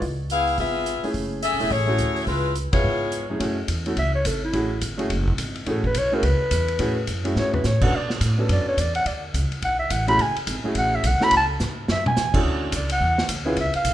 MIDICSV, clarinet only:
0, 0, Header, 1, 2, 480
1, 0, Start_track
1, 0, Key_signature, 3, "minor"
1, 0, Tempo, 282486
1, 27, Time_signature, 4, 2, 24, 8
1, 23682, End_track
2, 0, Start_track
2, 0, Title_t, "Clarinet"
2, 0, Program_c, 0, 71
2, 6777, Note_on_c, 0, 76, 79
2, 7038, Note_off_c, 0, 76, 0
2, 7048, Note_on_c, 0, 73, 76
2, 7256, Note_on_c, 0, 69, 69
2, 7281, Note_off_c, 0, 73, 0
2, 7541, Note_off_c, 0, 69, 0
2, 7556, Note_on_c, 0, 64, 80
2, 8161, Note_off_c, 0, 64, 0
2, 9685, Note_on_c, 0, 69, 72
2, 9937, Note_off_c, 0, 69, 0
2, 9962, Note_on_c, 0, 71, 87
2, 10165, Note_on_c, 0, 73, 93
2, 10191, Note_off_c, 0, 71, 0
2, 10443, Note_on_c, 0, 70, 82
2, 10468, Note_off_c, 0, 73, 0
2, 10616, Note_on_c, 0, 71, 85
2, 10641, Note_off_c, 0, 70, 0
2, 12045, Note_off_c, 0, 71, 0
2, 12545, Note_on_c, 0, 73, 83
2, 12807, Note_off_c, 0, 73, 0
2, 12815, Note_on_c, 0, 71, 74
2, 13019, Note_on_c, 0, 73, 73
2, 13045, Note_off_c, 0, 71, 0
2, 13311, Note_on_c, 0, 78, 85
2, 13337, Note_off_c, 0, 73, 0
2, 13525, Note_on_c, 0, 74, 84
2, 13550, Note_off_c, 0, 78, 0
2, 13796, Note_off_c, 0, 74, 0
2, 14478, Note_on_c, 0, 74, 85
2, 14734, Note_off_c, 0, 74, 0
2, 14750, Note_on_c, 0, 73, 85
2, 14949, Note_on_c, 0, 74, 80
2, 14974, Note_off_c, 0, 73, 0
2, 15207, Note_off_c, 0, 74, 0
2, 15217, Note_on_c, 0, 78, 92
2, 15410, Note_on_c, 0, 74, 63
2, 15435, Note_off_c, 0, 78, 0
2, 15699, Note_off_c, 0, 74, 0
2, 16389, Note_on_c, 0, 78, 89
2, 16628, Note_off_c, 0, 78, 0
2, 16639, Note_on_c, 0, 76, 90
2, 16850, Note_on_c, 0, 78, 78
2, 16876, Note_off_c, 0, 76, 0
2, 17125, Note_off_c, 0, 78, 0
2, 17136, Note_on_c, 0, 83, 97
2, 17358, Note_on_c, 0, 80, 91
2, 17384, Note_off_c, 0, 83, 0
2, 17634, Note_off_c, 0, 80, 0
2, 18329, Note_on_c, 0, 78, 84
2, 18613, Note_on_c, 0, 76, 86
2, 18638, Note_off_c, 0, 78, 0
2, 18814, Note_on_c, 0, 78, 83
2, 18840, Note_off_c, 0, 76, 0
2, 19097, Note_on_c, 0, 83, 117
2, 19122, Note_off_c, 0, 78, 0
2, 19256, Note_off_c, 0, 83, 0
2, 19319, Note_on_c, 0, 81, 95
2, 19471, Note_off_c, 0, 81, 0
2, 20252, Note_on_c, 0, 76, 81
2, 20499, Note_off_c, 0, 76, 0
2, 20513, Note_on_c, 0, 80, 92
2, 21116, Note_off_c, 0, 80, 0
2, 21674, Note_on_c, 0, 74, 62
2, 21928, Note_off_c, 0, 74, 0
2, 21953, Note_on_c, 0, 78, 92
2, 22554, Note_off_c, 0, 78, 0
2, 23114, Note_on_c, 0, 76, 78
2, 23366, Note_off_c, 0, 76, 0
2, 23375, Note_on_c, 0, 77, 84
2, 23682, Note_off_c, 0, 77, 0
2, 23682, End_track
0, 0, End_of_file